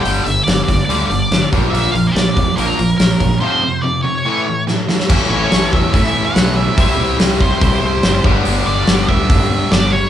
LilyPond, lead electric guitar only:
\new Staff \with { instrumentName = "Lead electric guitar" } { \time 4/4 \key a \mixolydian \tempo 4 = 143 g''8 e''8 d''8 d''8 d''8 d''4 r8 | \tuplet 3/2 { e''8. f''8 bes'16 } d''4 bes'4 bes'4 | c''4 d''8 cis''4. r4 | r8 cis''4 e''8 e''8. fis''8. e''8~ |
e''4 r8 c''2 r8 | r8 d''4 e''4. d''8 cis''8 | }